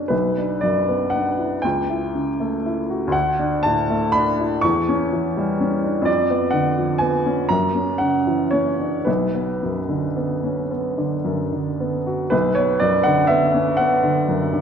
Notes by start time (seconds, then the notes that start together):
Already playing: F#2 C#3 A#3 C#4 D4
0.08 B1 B4
0.37 D4
0.61 F#2 D5
0.89 B3
1.10 D4 F#5
1.39 E4
1.62 C#2 G5
1.90 E4
2.15 C#3
2.40 A3
2.66 E4
2.90 F#4
3.07 D2
3.12 F#5
3.39 D4
3.63 A2 A5
3.90 A3
4.12 D4 B5
4.40 E4
4.61 E2 C#6
4.89 C#4
5.13 E3
5.37 G3
5.61 C#4
5.83 D4
6.02 F2 D5
6.30 B3
6.51 D3 F#5
6.78 F3
6.98 B3 G#5
7.26 C#4
7.49 F#2 A#5
7.75 C#4
7.98 C#3 F#5
8.27 E3
8.51 C#4 C#5
8.79 D4
9.05 B1 B4
9.35 B3
9.63 F#2
9.89 D3
10.16 B3
10.44 C#4
10.71 B3
10.98 D3
11.24 F#2
11.52 D3
11.80 B3
12.06 F#4
12.30 B1 B4
12.55 B3 C#5
12.80 F#2 D5
13.03 D3 F#5
13.27 B3 E5
13.54 C#4
13.77 B3 F#5
14.04 D3
14.28 F#2
14.53 D3